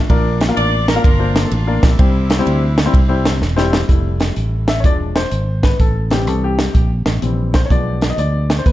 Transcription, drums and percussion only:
0.10 kick, ride
0.41 snare, ride
0.57 ride
0.88 snare, ride
1.04 kick, ride
1.36 snare, ride
1.51 ride
1.83 kick, snare, ride
1.99 kick, ride
2.30 snare, ride
2.47 ride
2.78 snare, ride
2.94 kick, ride
3.25 snare, ride
3.42 snare
3.58 snare
3.73 snare
3.89 kick, closed hi-hat
4.20 snare, closed hi-hat
4.36 closed hi-hat
4.68 snare, closed hi-hat
4.84 kick, closed hi-hat
5.16 snare, closed hi-hat
5.31 closed hi-hat
5.63 kick, snare, closed hi-hat
5.80 kick, closed hi-hat
6.11 snare, closed hi-hat
6.27 closed hi-hat
6.59 snare, closed hi-hat
6.75 kick, closed hi-hat
7.06 snare, closed hi-hat
7.22 closed hi-hat
7.54 kick, snare, closed hi-hat
7.70 kick, closed hi-hat
8.01 snare, closed hi-hat
8.18 closed hi-hat
8.50 snare, closed hi-hat
8.66 kick, closed hi-hat

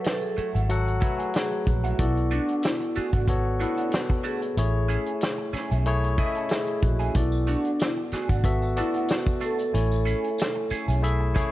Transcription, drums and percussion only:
0.04 snare, closed hi-hat
0.37 closed hi-hat
0.56 closed hi-hat
0.69 closed hi-hat
0.88 closed hi-hat
1.02 kick, closed hi-hat
1.19 closed hi-hat
1.34 snare, closed hi-hat
1.67 kick, closed hi-hat
1.84 closed hi-hat
1.99 kick, closed hi-hat
2.17 closed hi-hat
2.31 closed hi-hat
2.48 closed hi-hat
2.63 snare, closed hi-hat
2.81 closed hi-hat
2.95 closed hi-hat
3.13 kick, closed hi-hat
3.28 kick, closed hi-hat
3.60 closed hi-hat
3.77 closed hi-hat
3.91 snare, closed hi-hat
4.10 kick, closed hi-hat
4.24 closed hi-hat
4.42 closed hi-hat
4.57 closed hi-hat
4.89 closed hi-hat
5.06 closed hi-hat
5.21 snare, closed hi-hat
5.54 snare, closed hi-hat
5.72 closed hi-hat
5.86 closed hi-hat
6.04 closed hi-hat
6.18 kick, closed hi-hat
6.35 closed hi-hat
6.49 snare, closed hi-hat
6.67 closed hi-hat
6.82 kick, closed hi-hat
7.00 closed hi-hat
7.15 kick, closed hi-hat
7.32 tambourine
7.47 closed hi-hat, tambourine
7.65 closed hi-hat
7.79 snare, closed hi-hat, tambourine
8.12 snare, closed hi-hat, tambourine
8.29 kick, closed hi-hat, tambourine
8.44 kick, closed hi-hat, tambourine
8.62 tambourine
8.77 closed hi-hat, tambourine
8.94 closed hi-hat
9.08 snare, closed hi-hat, tambourine
9.26 kick, tambourine
9.41 closed hi-hat, tambourine
9.59 closed hi-hat, tambourine
9.74 closed hi-hat
9.91 closed hi-hat, tambourine
10.06 closed hi-hat, tambourine
10.24 closed hi-hat
10.38 snare, closed hi-hat, tambourine
10.70 closed hi-hat, tambourine
10.88 closed hi-hat, tambourine
11.04 closed hi-hat, tambourine
11.35 kick, closed hi-hat, tambourine

